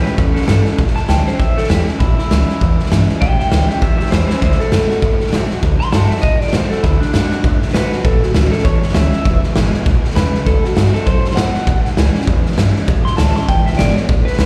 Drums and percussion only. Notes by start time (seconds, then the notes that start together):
0.06 snare
0.18 kick, snare
0.36 snare
0.41 snare
0.48 snare, hi-hat pedal
0.65 snare
0.78 kick, snare
0.87 snare
0.96 snare
1.09 snare, hi-hat pedal
1.27 snare
1.39 kick, snare
1.57 snare
1.64 snare
1.70 snare, hi-hat pedal
1.88 snare
2.00 kick, snare
2.18 snare
2.31 snare, hi-hat pedal
2.49 snare
2.61 kick, snare
2.79 snare
2.86 snare
2.92 snare, hi-hat pedal
3.09 snare
3.22 kick, snare
3.40 snare
3.52 snare, hi-hat pedal
3.70 snare
3.82 kick, snare
4.00 snare
4.06 snare
4.12 snare, hi-hat pedal
4.30 snare
4.42 kick, snare
4.51 snare
4.60 snare
4.72 snare, hi-hat pedal
4.90 snare
5.02 kick, snare
5.20 snare
5.27 snare
5.33 snare, hi-hat pedal
5.51 snare
5.63 kick, snare
5.81 snare
5.93 snare, hi-hat pedal
6.10 snare
6.17 snare
6.23 kick, snare
6.41 snare
6.47 snare
6.53 snare, hi-hat pedal
6.71 snare
6.84 kick, snare
7.02 snare
7.14 snare, hi-hat pedal
7.32 snare
7.44 kick, snare
7.62 snare
7.68 snare
7.74 snare, hi-hat pedal
7.92 snare
8.05 kick, snare
8.23 snare
8.35 snare, hi-hat pedal
8.52 snare
8.58 snare
8.64 kick, snare
8.82 snare
8.88 snare
8.95 snare, hi-hat pedal
9.13 snare
9.25 kick, snare
9.43 snare
9.56 snare, hi-hat pedal
9.74 snare
9.86 kick, snare
10.04 snare
10.10 snare
10.16 snare, hi-hat pedal
10.34 snare
10.47 kick, snare
10.64 snare
10.77 snare, hi-hat pedal
10.94 snare
11.07 kick, snare
11.25 snare
11.31 snare
11.37 snare, hi-hat pedal
11.54 snare
11.67 kick, snare
11.85 snare
11.97 snare, hi-hat pedal
12.15 snare
12.21 snare
12.27 kick, snare
12.46 snare
12.51 snare
12.58 snare, hi-hat pedal
12.76 snare
12.88 kick, snare
13.06 snare
13.18 snare, hi-hat pedal
13.36 snare
13.49 kick, snare
13.67 snare
13.73 snare
13.79 snare, hi-hat pedal
13.97 snare
14.09 kick, snare
14.27 snare
14.33 snare
14.39 snare, hi-hat pedal